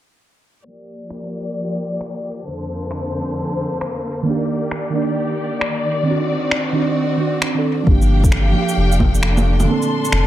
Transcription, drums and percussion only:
1.10 finger snap
2.01 finger snap
2.91 finger snap
3.81 finger snap
4.71 finger snap
5.61 finger snap
6.51 finger snap
7.42 finger snap
7.87 kick
8.02 shaker
8.24 kick, shaker
8.32 finger snap
8.69 shaker
8.92 shaker
9.00 kick, low bongo
9.15 shaker
9.23 finger snap
9.37 low bongo, shaker
9.60 low bongo, shaker
9.82 shaker
10.05 shaker
10.12 finger snap

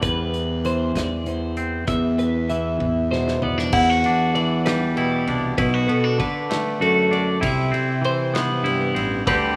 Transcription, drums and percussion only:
0.02 kick, closed hi-hat
0.34 closed hi-hat
0.65 closed hi-hat
0.95 kick, snare, closed hi-hat
1.26 closed hi-hat
1.57 closed hi-hat
1.87 kick, closed hi-hat
2.19 closed hi-hat
2.49 closed hi-hat
2.80 kick, high tom
3.13 snare
3.28 snare
3.42 floor tom
3.59 snare
3.72 kick, crash
4.04 ride
4.35 ride
4.66 snare, ride
4.97 ride
5.27 ride
5.58 kick, ride
5.89 ride
6.20 kick, ride
6.51 snare, ride
6.82 ride
7.13 ride
7.43 kick, ride
7.74 ride
8.04 ride
8.35 snare, ride
8.66 ride
8.96 ride
9.27 kick, ride

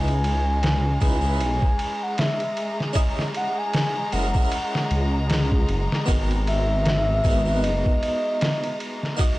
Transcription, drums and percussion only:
0.08 ride
0.24 ride
0.63 snare, ride
1.01 kick, ride
1.40 ride
1.62 kick
1.79 ride
2.18 snare, ride
2.40 ride
2.57 ride
2.80 snare
2.95 kick, ride
3.19 snare
3.35 ride
3.73 snare, ride
4.12 ride
4.35 kick
4.52 ride
4.75 snare
4.91 ride
5.30 snare, ride
5.52 kick
5.69 ride
5.92 snare
6.08 kick, ride
6.31 ride
6.47 ride
6.86 snare, ride
7.25 kick, ride
7.64 ride
7.86 kick
8.03 ride
8.41 snare, ride
8.64 ride
8.80 ride
9.03 snare
9.19 kick, ride

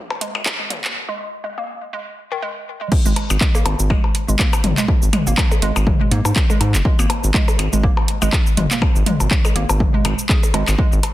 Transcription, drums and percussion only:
0.10 percussion blips
0.21 closed hi-hat
0.35 percussion blips
0.46 kick, clap, closed hi-hat, percussion blips
0.70 closed hi-hat, mid tom
0.84 clap
2.92 kick, crash
3.06 cabasa
3.16 closed hi-hat, percussion blips
3.30 cabasa, percussion blips
3.41 kick, clap
3.55 percussion blips, cabasa
3.66 closed hi-hat, percussion blips
3.79 cabasa
3.90 kick, percussion blips
4.04 percussion blips
4.15 closed hi-hat
4.29 cabasa
4.39 kick, clap
4.53 percussion blips, cabasa
4.64 closed hi-hat, mid tom
4.78 clap, cabasa
4.88 kick, percussion blips
5.02 cabasa
5.13 closed hi-hat, mid tom, percussion blips
5.27 cabasa
5.38 kick, clap, percussion blips
5.51 percussion blips, cabasa
5.62 closed hi-hat
5.76 percussion blips, cabasa
5.87 kick, mid tom
6.11 closed hi-hat
6.25 percussion blips, cabasa
6.36 kick, clap, percussion blips
6.50 percussion blips, cabasa
6.61 closed hi-hat, percussion blips
6.75 clap, cabasa
6.85 kick
6.99 cabasa, percussion blips
7.10 closed hi-hat, percussion blips
7.24 cabasa
7.34 kick, clap
7.48 percussion blips, cabasa
7.59 closed hi-hat, percussion blips
7.73 cabasa
7.83 kick
7.97 percussion blips
8.08 closed hi-hat
8.22 cabasa, percussion blips
8.33 kick, clap, percussion blips
8.47 cabasa
8.57 closed hi-hat, mid tom
8.71 clap, cabasa
8.82 kick, percussion blips
8.96 cabasa
9.06 closed hi-hat, mid tom
9.20 percussion blips, cabasa
9.31 kick, clap
9.45 percussion blips, cabasa
9.56 closed hi-hat
9.69 percussion blips, cabasa
9.80 kick, mid tom
10.05 closed hi-hat, percussion blips
10.19 cabasa
10.29 kick, clap
10.43 percussion blips, cabasa
10.54 closed hi-hat, percussion blips
10.68 clap, cabasa, percussion blips
10.79 kick
10.93 cabasa
11.03 closed hi-hat, percussion blips

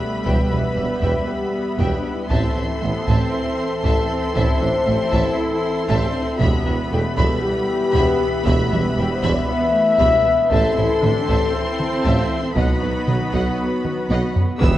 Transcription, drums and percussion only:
0.26 taiko
1.03 taiko
1.80 taiko
2.31 taiko
3.08 taiko
3.85 taiko
4.36 taiko
5.13 taiko
5.90 taiko
6.41 taiko
7.17 taiko
7.95 taiko
8.46 taiko
9.23 taiko
10.00 taiko
10.51 taiko
11.03 taiko mid
11.28 taiko
11.80 taiko mid
12.05 taiko
12.57 taiko
13.08 taiko mid
13.34 taiko
13.85 taiko mid
14.11 taiko high
14.36 taiko low
14.62 taiko

